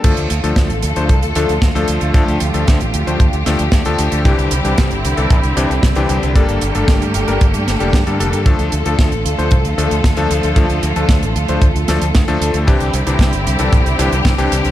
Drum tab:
CC |x---------------|----------------|----------------|----------------|
HH |xxxxxxxxxxxxxxxx|xxxxxxxxxxxxxxxx|xxxxxxxxxxxxxxxx|xxxxxxxxxxxxxxxx|
SD |----o-------o---|----o-----o-o---|----o-------o---|----o-----o-o---|
BD |o---o---o---o---|o---o---o---o---|o---o---o---o---|o---o---o---o---|

CC |----------------|----------------|----------------|
HH |xxxxxxxxxxxxxxxx|xxxxxxxxxxxxxxxx|xxxxxxxxxxxxxxxx|
SD |----o-------o---|----o-----o-o---|----o-------o---|
BD |o---o---o---o---|o---o---o---o---|o---o---o---o---|